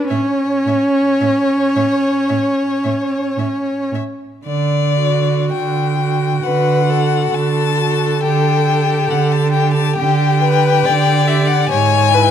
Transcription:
Already playing: violin B4
0.08 cello A2, viola C#4, violin C#5 E5
0.66 cello A2, violin E5
1.21 cello A2, violin E5
1.76 cello A2, violin E5
2.29 cello A2, violin E5
2.84 cello A2, violin E5
3.37 cello A2, violin E5
3.92 cello A2, violin E5
4.45 cello D3, violin D5
4.98 viola F#4
5.52 cello D3, violin G5
5.99 viola F#4
6.43 cello D3, violin B4 F#5
6.86 viola F#4, violin A4
7.31 cello D3, violin A5
7.78 viola F#4
8.22 cello D3, viola G4, violin G5
8.66 viola G4
9.10 cello D3, violin F#5
9.32 violin A5
9.52 viola G4, violin G5
9.74 violin A5
9.96 cello D3, violin G4 G5
10.41 viola G4, violin B4
10.85 cello D3, violin D5
11.26 viola G4, violin E5
11.47 violin F#5
11.69 cello G#2, violin C#5 G#5
12.13 viola E4, violin B4

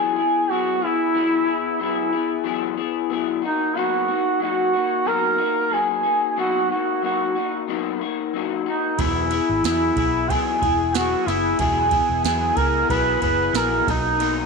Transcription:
Already playing: clean electric guitar E3 F#3 B3 E4 G#4, duduk G#4
0.16 clean electric guitar B3 E4 G#4
0.50 clean electric guitar F#3 B3 E4 G#4, duduk F#4
0.81 clean electric guitar B3 E4 G#4, duduk E4
1.14 clean electric guitar E3 F#3 B3 E4 G#4
1.46 clean electric guitar B3 E4 G#4
1.79 clean electric guitar F#3 B3 E4 G#4, duduk E4
2.12 clean electric guitar B3 E4 G#4
2.44 clean electric guitar E3 F#3 B3 E4 G#4
2.77 clean electric guitar B3 E4 G#4
3.10 clean electric guitar F#3 B3 E4 G#4
3.42 clean electric guitar A#3 D#4 F#4, duduk D#4
3.75 clean electric guitar B2 F#3 A#3 D#4 F#4, duduk F#4
4.08 clean electric guitar A#3 D#4 F#4
4.40 clean electric guitar F#3 A#3 D#4 F#4, duduk F#4
4.73 clean electric guitar A#3 D#4 F#4
5.05 clean electric guitar B2 F#3 A#3 D#4 F#4, duduk A#4
5.38 clean electric guitar D#4 F#4
5.42 clean electric guitar A#3
5.70 clean electric guitar F#3 A#3 D#4, duduk G#4
5.74 clean electric guitar F#4
6.03 clean electric guitar A#3 D#4 F#4
6.36 clean electric guitar B2 F#3 A#3 D#4 F#4, duduk F#4
6.69 clean electric guitar A#3 D#4 F#4, duduk F#4
7.02 clean electric guitar F#3 A#3 D#4 F#4, duduk F#4
7.35 clean electric guitar A#3 D#4 F#4
7.68 clean electric guitar B2 F#3 A#3 D#4 F#4
8.01 clean electric guitar A#3 D#4 F#4
8.33 clean electric guitar F#3 A#3 D#4 F#4
8.66 clean electric guitar A#3 D#4 F#4, duduk D#4
8.98 fingered electric bass E1, clean electric guitar E3 F#3 B3 E4 G#4, duduk E4, analog synth pad G#4 E5 F#5 G#5, kick, ride
9.31 clean electric guitar B3 E4 G#4, ride
9.49 fingered electric bass G#1
9.63 fingered electric bass E2, clean electric guitar F#3 B3 E4, duduk E4, snare, ride
9.68 clean electric guitar G#4
9.96 fingered electric bass B1, clean electric guitar B3 E4 G#4, kick, ride
10.29 clean electric guitar E3 F#3 B3 E4 G#4, duduk G#4, kick, ride
10.62 fingered electric bass E1, clean electric guitar B3 E4 G#4, kick, ride
10.93 clean electric guitar F#3 B3 E4 G#4, duduk F#4, snare, ride
11.26 fingered electric bass F#1, clean electric guitar B3 E4 G#4, duduk E4, snare, ride
11.59 fingered electric bass E1, clean electric guitar E3 F#3 B3 E4 G#4, duduk G#4, kick, ride
11.91 clean electric guitar B3 E4 G#4, kick, ride
12.09 fingered electric bass E1
12.24 fingered electric bass E2, clean electric guitar F#3 B3 E4, duduk G#4, snare, ride
12.28 clean electric guitar G#4
12.56 fingered electric bass C#2, clean electric guitar B3 E4 G#4, duduk A#4, kick, ride
12.89 fingered electric bass B1, clean electric guitar E3 F#3 B3 E4 G#4, duduk B4, kick, ride
13.21 fingered electric bass F#1, clean electric guitar B3 E4 G#4, duduk B4, kick, ride
13.53 fingered electric bass A#1, clean electric guitar F#3 B3 E4 G#4, duduk A#4, snare, ride
13.86 fingered electric bass B1, clean electric guitar F#3 A#3 D#4, duduk D#4, analog synth pad A#4 D#5, kick, snare, ride
14.19 clean electric guitar B2 F#3 A#3 D#4, ride

